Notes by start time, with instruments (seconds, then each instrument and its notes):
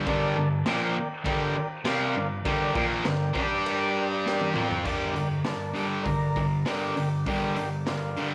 0.07 distorted electric guitar G2 D3 G3, transistor combo organ A#4 D5 A5, kick, crash
0.36 distorted electric guitar G2 D3
0.66 distorted electric guitar A#2 F3 A#3, transistor combo organ A#4 D5 G5, snare, crash
0.96 muted distorted electric guitar stroke
1.24 distorted electric guitar G2 D3 G3, transistor combo organ A#4 D5 G5, kick, crash
1.56 muted distorted electric guitar stroke
1.85 distorted electric guitar C3 G3 C4, transistor combo organ A#4 D5 F5, snare, crash
2.15 distorted electric guitar G2 D3
2.45 distorted electric guitar G2 D3 G3, transistor combo organ A#4 D5 G5, kick, crash
2.75 distorted electric guitar A#2 F3 A#3, kick
3.04 distorted electric guitar G2 D3, transistor combo organ A#4 D5 G5, snare, crash
3.33 distorted electric guitar G3 D4 G4, kick
3.66 transistor combo organ A#4 D5 G5, crash
4.26 transistor combo organ A#4 D5 G5, snare
4.41 high tom
4.54 distorted electric guitar F3 C4 F4, mid tom
4.71 floor tom
4.84 distorted electric guitar G2 D3 G3, transistor combo organ A#4 D5, kick, crash
4.89 transistor combo organ G5
5.14 distorted electric guitar G2 D3, open hi-hat
5.45 distorted electric guitar G2 D3, transistor combo organ A#4 D5 A5, snare, open hi-hat
5.74 distorted electric guitar G2 D3 G3, open hi-hat
6.02 distorted electric guitar G2 D3, transistor combo organ A#4 D5 A#5, kick, open hi-hat
6.36 distorted electric guitar G2 D3, kick, open hi-hat
6.66 distorted electric guitar G2 D3 G3, transistor combo organ A#4 D5 G5, snare, open hi-hat
6.97 distorted electric guitar G2 D3, open hi-hat
7.26 distorted electric guitar G2 D3 G3, transistor combo organ A#4 D5 G5, kick, open hi-hat
7.56 distorted electric guitar G2 D3, open hi-hat
7.85 distorted electric guitar G2 D3, transistor combo organ A#4 D5 F5, snare, open hi-hat
8.17 distorted electric guitar G2 D3 G3, open hi-hat